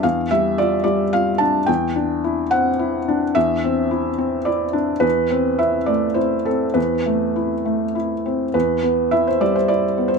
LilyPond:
\new Staff \with { instrumentName = "Felt piano" } { \time 3/4 \key e \minor \tempo 4 = 107 << { f''8 e''8 d''8 d''8 f''8 a''8 | g''4. fis''4. | e''2 d''8 r8 | b'4 e''8 d''8 c''8 a'8 |
b'2 r4 | b'4 e''16 c''16 d''16 c''16 d''8. c''16 | } \\ { <e, d'>8 g8 f'8 g8 f'8 d'8 | e,8 d'8 e'8 c'8 e'8 d'8 | e,8 c'8 e'8 c'8 e'8 d'8 | e,8 c'8 e'8 a8 e'8 c'8 |
e,8 a8 e'8 a8 e'8 c'8 | e,8 b8 e'8 g8 e'8 b8 | } >> }